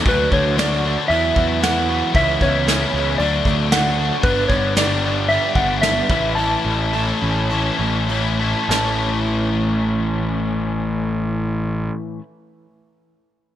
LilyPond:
<<
  \new Staff \with { instrumentName = "Clean electric guitar" } { \time 4/4 \key a \major \tempo 4 = 109 b'8 cis''8 d''4 e''4 fis''4 | e''8 cis''4. d''4 fis''8. r16 | b'8 cis''8 d''4 e''8 fis''8 e''4 | a''2.~ a''8 r8 |
a''1~ | a''1 | }
  \new Staff \with { instrumentName = "Overdriven electric guitar" } { \time 4/4 \key a \major fis8 a8 fis'8 d'8 e8 b8 e'8 fis'8 | e8 b8 gis'8 cis'8 fis8 a8 d'8 fis'8 | b8 b8 g'8 d'8 g'8 b8 d'8 e8 | e8 a8 a'8 cis'8 a'8 a8 cis'8 a'8 |
<e a cis'>1~ | <e a cis'>1 | }
  \new Staff \with { instrumentName = "Overdriven electric guitar" } { \time 4/4 \key a \major <d fis a d'>8 <fis a d'>8 <d fis a d'>8 <fis a d'>8 <e fis b e'>8 <fis b e'>8 <e fis b e'>8 <fis b e'>8 | <cis gis cis' e'>8 <gis cis' e'>8 <cis gis cis' e'>8 <gis cis' e'>8 <d fis a d'>8 <fis a d'>8 <d fis a d'>8 <fis a d'>8 | <g, d g b d'>8 <g b d'>8 <g, d g b d'>8 <g b d'>8 <d g b d'>8 <g b d'>8 <g, d g b d'>8 <a, e a cis' e'>8 | <a, e a cis' e'>8 <a cis' e'>8 <a, e a cis' e'>8 <a cis' e'>8 <e a cis' e'>8 <a cis' e'>8 <a, e a cis' e'>8 <a cis' e'>8 |
<a, e a cis' e'>1~ | <a, e a cis' e'>1 | }
  \new Staff \with { instrumentName = "Picked electric bass" } { \clef bass \time 4/4 \key a \major d,8 d,4. e,8 e,4. | cis,8 cis,4 cis,8 d,8 d,4. | g,,8 g,,2 g,,4 a,,8~ | a,,8 a,,4 a,,4 a,,4. |
a,,1~ | a,,1 | }
  \new DrumStaff \with { instrumentName = "Drums" } \drummode { \time 4/4 <hho bd>8 bd8 <hho sn>4 hho8 bd8 <hho sn>4 | <hho bd>8 bd8 <hho sn>4 hho8 bd8 <hho sn>4 | <hho bd>8 bd8 <hho sn>4 hho8 bd8 <hho sn>8 bd8 | hho4 hho4 hho4 hho4 |
sn4 r4 r4 r4 | r4 r4 r4 r4 | }
>>